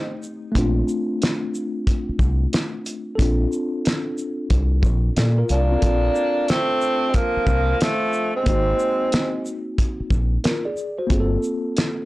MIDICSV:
0, 0, Header, 1, 7, 480
1, 0, Start_track
1, 0, Key_signature, -2, "major"
1, 0, Tempo, 659341
1, 399, Time_signature, 4, 2, 24, 8
1, 8774, End_track
2, 0, Start_track
2, 0, Title_t, "Tine electric piano"
2, 0, Program_c, 0, 4
2, 0, Note_on_c, 0, 57, 61
2, 0, Note_on_c, 0, 60, 56
2, 0, Note_on_c, 0, 63, 56
2, 0, Note_on_c, 0, 67, 63
2, 362, Note_off_c, 0, 57, 0
2, 369, Note_off_c, 0, 60, 0
2, 377, Note_off_c, 0, 63, 0
2, 377, Note_on_c, 0, 57, 64
2, 398, Note_on_c, 0, 60, 66
2, 409, Note_off_c, 0, 67, 0
2, 414, Note_on_c, 0, 62, 67
2, 427, Note_on_c, 0, 65, 79
2, 2279, Note_off_c, 0, 57, 0
2, 2289, Note_off_c, 0, 60, 0
2, 2296, Note_on_c, 0, 69, 69
2, 2297, Note_off_c, 0, 62, 0
2, 2304, Note_off_c, 0, 65, 0
2, 2315, Note_on_c, 0, 60, 64
2, 2331, Note_on_c, 0, 62, 68
2, 2346, Note_on_c, 0, 65, 70
2, 3728, Note_off_c, 0, 60, 0
2, 3736, Note_off_c, 0, 62, 0
2, 3744, Note_off_c, 0, 65, 0
2, 3759, Note_off_c, 0, 69, 0
2, 3763, Note_on_c, 0, 74, 62
2, 3768, Note_on_c, 0, 69, 53
2, 3909, Note_off_c, 0, 74, 0
2, 3911, Note_off_c, 0, 69, 0
2, 3918, Note_on_c, 0, 70, 63
2, 3923, Note_on_c, 0, 65, 55
2, 4144, Note_off_c, 0, 70, 0
2, 4147, Note_off_c, 0, 65, 0
2, 4158, Note_on_c, 0, 65, 64
2, 4163, Note_on_c, 0, 60, 55
2, 4213, Note_on_c, 0, 69, 59
2, 4219, Note_off_c, 0, 60, 0
2, 4228, Note_on_c, 0, 60, 54
2, 4245, Note_on_c, 0, 62, 51
2, 4254, Note_off_c, 0, 65, 0
2, 4263, Note_on_c, 0, 65, 63
2, 6117, Note_off_c, 0, 69, 0
2, 6125, Note_off_c, 0, 60, 0
2, 6133, Note_off_c, 0, 62, 0
2, 6142, Note_off_c, 0, 65, 0
2, 6142, Note_on_c, 0, 58, 59
2, 6158, Note_on_c, 0, 60, 53
2, 6176, Note_on_c, 0, 63, 53
2, 6190, Note_on_c, 0, 66, 64
2, 7351, Note_off_c, 0, 66, 0
2, 7601, Note_on_c, 0, 70, 63
2, 7606, Note_on_c, 0, 65, 51
2, 7748, Note_off_c, 0, 70, 0
2, 7750, Note_off_c, 0, 65, 0
2, 7755, Note_on_c, 0, 74, 65
2, 7761, Note_on_c, 0, 68, 59
2, 7801, Note_off_c, 0, 58, 0
2, 7809, Note_off_c, 0, 60, 0
2, 7818, Note_off_c, 0, 63, 0
2, 7983, Note_off_c, 0, 74, 0
2, 7986, Note_off_c, 0, 68, 0
2, 7997, Note_on_c, 0, 72, 61
2, 8001, Note_on_c, 0, 66, 48
2, 8058, Note_on_c, 0, 58, 68
2, 8076, Note_on_c, 0, 60, 70
2, 8090, Note_on_c, 0, 65, 59
2, 8105, Note_on_c, 0, 68, 62
2, 8154, Note_off_c, 0, 68, 0
2, 8155, Note_on_c, 0, 69, 81
2, 8224, Note_off_c, 0, 72, 0
2, 8226, Note_off_c, 0, 66, 0
2, 8774, Note_off_c, 0, 58, 0
2, 8774, Note_off_c, 0, 60, 0
2, 8774, Note_off_c, 0, 65, 0
2, 8774, Note_off_c, 0, 69, 0
2, 8774, End_track
3, 0, Start_track
3, 0, Title_t, "Tenor saxophone"
3, 0, Program_c, 1, 66
3, 0, Note_on_c, 1, 63, 91
3, 168, Note_off_c, 1, 63, 0
3, 4013, Note_on_c, 1, 62, 117
3, 4733, Note_on_c, 1, 60, 104
3, 4744, Note_off_c, 1, 62, 0
3, 5209, Note_on_c, 1, 58, 95
3, 5220, Note_off_c, 1, 60, 0
3, 5684, Note_off_c, 1, 58, 0
3, 5692, Note_on_c, 1, 57, 81
3, 6053, Note_off_c, 1, 57, 0
3, 6087, Note_on_c, 1, 60, 96
3, 7011, Note_off_c, 1, 60, 0
3, 8774, End_track
4, 0, Start_track
4, 0, Title_t, "Trombone"
4, 0, Program_c, 2, 57
4, 0, Note_on_c, 2, 60, 75
4, 164, Note_off_c, 2, 60, 0
4, 3998, Note_on_c, 2, 58, 88
4, 4721, Note_on_c, 2, 57, 78
4, 4732, Note_off_c, 2, 58, 0
4, 5204, Note_on_c, 2, 53, 75
4, 5215, Note_off_c, 2, 57, 0
4, 5681, Note_off_c, 2, 53, 0
4, 5688, Note_on_c, 2, 53, 70
4, 6051, Note_off_c, 2, 53, 0
4, 6084, Note_on_c, 2, 56, 68
4, 7010, Note_off_c, 2, 56, 0
4, 8774, End_track
5, 0, Start_track
5, 0, Title_t, "Fingered electric bass"
5, 0, Program_c, 3, 33
5, 406, Note_on_c, 3, 34, 96
5, 591, Note_off_c, 3, 34, 0
5, 1597, Note_on_c, 3, 36, 93
5, 1786, Note_off_c, 3, 36, 0
5, 2323, Note_on_c, 3, 34, 85
5, 2509, Note_off_c, 3, 34, 0
5, 3281, Note_on_c, 3, 36, 92
5, 3516, Note_off_c, 3, 36, 0
5, 3516, Note_on_c, 3, 34, 80
5, 3705, Note_off_c, 3, 34, 0
5, 3763, Note_on_c, 3, 46, 91
5, 3949, Note_off_c, 3, 46, 0
5, 4004, Note_on_c, 3, 36, 76
5, 4190, Note_off_c, 3, 36, 0
5, 4242, Note_on_c, 3, 34, 91
5, 4429, Note_off_c, 3, 34, 0
5, 5439, Note_on_c, 3, 36, 83
5, 5627, Note_off_c, 3, 36, 0
5, 6165, Note_on_c, 3, 32, 95
5, 6351, Note_off_c, 3, 32, 0
5, 7358, Note_on_c, 3, 34, 80
5, 7546, Note_off_c, 3, 34, 0
5, 8084, Note_on_c, 3, 31, 92
5, 8270, Note_off_c, 3, 31, 0
5, 8774, End_track
6, 0, Start_track
6, 0, Title_t, "Muted fingered electric bass strokes"
6, 1522, Note_on_c, 9, 29, 45
6, 1594, Note_off_c, 9, 29, 0
6, 5364, Note_on_c, 9, 29, 39
6, 5437, Note_off_c, 9, 29, 0
6, 7282, Note_on_c, 9, 29, 43
6, 7354, Note_off_c, 9, 29, 0
6, 8774, End_track
7, 0, Start_track
7, 0, Title_t, "Drums"
7, 167, Note_on_c, 9, 82, 49
7, 240, Note_off_c, 9, 82, 0
7, 403, Note_on_c, 9, 36, 99
7, 403, Note_on_c, 9, 42, 90
7, 476, Note_off_c, 9, 36, 0
7, 476, Note_off_c, 9, 42, 0
7, 645, Note_on_c, 9, 82, 49
7, 717, Note_off_c, 9, 82, 0
7, 887, Note_on_c, 9, 42, 58
7, 898, Note_on_c, 9, 38, 96
7, 959, Note_off_c, 9, 42, 0
7, 971, Note_off_c, 9, 38, 0
7, 1126, Note_on_c, 9, 82, 53
7, 1199, Note_off_c, 9, 82, 0
7, 1362, Note_on_c, 9, 36, 90
7, 1364, Note_on_c, 9, 42, 81
7, 1435, Note_off_c, 9, 36, 0
7, 1437, Note_off_c, 9, 42, 0
7, 1596, Note_on_c, 9, 36, 97
7, 1604, Note_on_c, 9, 82, 51
7, 1669, Note_off_c, 9, 36, 0
7, 1677, Note_off_c, 9, 82, 0
7, 1842, Note_on_c, 9, 42, 65
7, 1851, Note_on_c, 9, 38, 97
7, 1914, Note_off_c, 9, 42, 0
7, 1924, Note_off_c, 9, 38, 0
7, 2083, Note_on_c, 9, 42, 46
7, 2083, Note_on_c, 9, 82, 44
7, 2156, Note_off_c, 9, 42, 0
7, 2156, Note_off_c, 9, 82, 0
7, 2323, Note_on_c, 9, 36, 107
7, 2323, Note_on_c, 9, 42, 89
7, 2396, Note_off_c, 9, 36, 0
7, 2396, Note_off_c, 9, 42, 0
7, 2566, Note_on_c, 9, 82, 49
7, 2638, Note_off_c, 9, 82, 0
7, 2805, Note_on_c, 9, 42, 60
7, 2817, Note_on_c, 9, 38, 99
7, 2878, Note_off_c, 9, 42, 0
7, 2890, Note_off_c, 9, 38, 0
7, 3043, Note_on_c, 9, 82, 54
7, 3116, Note_off_c, 9, 82, 0
7, 3276, Note_on_c, 9, 42, 77
7, 3280, Note_on_c, 9, 36, 95
7, 3349, Note_off_c, 9, 42, 0
7, 3353, Note_off_c, 9, 36, 0
7, 3515, Note_on_c, 9, 36, 99
7, 3523, Note_on_c, 9, 82, 47
7, 3587, Note_off_c, 9, 36, 0
7, 3596, Note_off_c, 9, 82, 0
7, 3760, Note_on_c, 9, 42, 68
7, 3769, Note_on_c, 9, 38, 101
7, 3833, Note_off_c, 9, 42, 0
7, 3842, Note_off_c, 9, 38, 0
7, 3999, Note_on_c, 9, 42, 46
7, 3999, Note_on_c, 9, 82, 46
7, 4072, Note_off_c, 9, 42, 0
7, 4072, Note_off_c, 9, 82, 0
7, 4237, Note_on_c, 9, 42, 84
7, 4241, Note_on_c, 9, 36, 104
7, 4310, Note_off_c, 9, 42, 0
7, 4314, Note_off_c, 9, 36, 0
7, 4480, Note_on_c, 9, 82, 51
7, 4553, Note_off_c, 9, 82, 0
7, 4720, Note_on_c, 9, 42, 55
7, 4732, Note_on_c, 9, 38, 105
7, 4793, Note_off_c, 9, 42, 0
7, 4805, Note_off_c, 9, 38, 0
7, 4961, Note_on_c, 9, 82, 54
7, 5034, Note_off_c, 9, 82, 0
7, 5196, Note_on_c, 9, 42, 73
7, 5201, Note_on_c, 9, 36, 91
7, 5269, Note_off_c, 9, 42, 0
7, 5273, Note_off_c, 9, 36, 0
7, 5436, Note_on_c, 9, 36, 105
7, 5441, Note_on_c, 9, 82, 49
7, 5509, Note_off_c, 9, 36, 0
7, 5514, Note_off_c, 9, 82, 0
7, 5683, Note_on_c, 9, 42, 64
7, 5692, Note_on_c, 9, 38, 110
7, 5755, Note_off_c, 9, 42, 0
7, 5765, Note_off_c, 9, 38, 0
7, 5920, Note_on_c, 9, 82, 50
7, 5992, Note_off_c, 9, 82, 0
7, 6160, Note_on_c, 9, 42, 87
7, 6163, Note_on_c, 9, 36, 109
7, 6233, Note_off_c, 9, 42, 0
7, 6235, Note_off_c, 9, 36, 0
7, 6402, Note_on_c, 9, 82, 51
7, 6475, Note_off_c, 9, 82, 0
7, 6641, Note_on_c, 9, 42, 62
7, 6653, Note_on_c, 9, 38, 105
7, 6714, Note_off_c, 9, 42, 0
7, 6726, Note_off_c, 9, 38, 0
7, 6886, Note_on_c, 9, 82, 59
7, 6959, Note_off_c, 9, 82, 0
7, 7123, Note_on_c, 9, 36, 100
7, 7124, Note_on_c, 9, 42, 76
7, 7196, Note_off_c, 9, 36, 0
7, 7196, Note_off_c, 9, 42, 0
7, 7356, Note_on_c, 9, 36, 99
7, 7362, Note_on_c, 9, 82, 49
7, 7429, Note_off_c, 9, 36, 0
7, 7435, Note_off_c, 9, 82, 0
7, 7601, Note_on_c, 9, 42, 72
7, 7611, Note_on_c, 9, 38, 105
7, 7674, Note_off_c, 9, 42, 0
7, 7683, Note_off_c, 9, 38, 0
7, 7841, Note_on_c, 9, 82, 43
7, 7914, Note_off_c, 9, 82, 0
7, 8081, Note_on_c, 9, 42, 87
7, 8083, Note_on_c, 9, 36, 105
7, 8154, Note_off_c, 9, 42, 0
7, 8156, Note_off_c, 9, 36, 0
7, 8322, Note_on_c, 9, 82, 48
7, 8395, Note_off_c, 9, 82, 0
7, 8565, Note_on_c, 9, 42, 62
7, 8577, Note_on_c, 9, 38, 98
7, 8638, Note_off_c, 9, 42, 0
7, 8650, Note_off_c, 9, 38, 0
7, 8774, End_track
0, 0, End_of_file